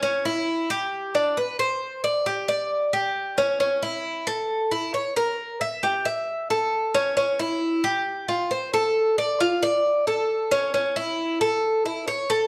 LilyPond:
\new Staff \with { instrumentName = "Cuban tres" } { \time 4/4 \key a \phrygian \tempo 4 = 134 cis'8 e'4 g'4 d'8 b'8 c''8~ | c''8 d''8 g'8 d''4 g'4 cis'8 | cis'8 e'4 a'4 e'8 cis''8 bes'8~ | bes'8 e''8 g'8 e''4 a'4 cis'8 |
cis'8 e'4 g'4 f'8 c''8 a'8~ | a'8 d''8 f'8 d''4 a'4 cis'8 | cis'8 e'4 a'4 e'8 cis''8 a'8 | }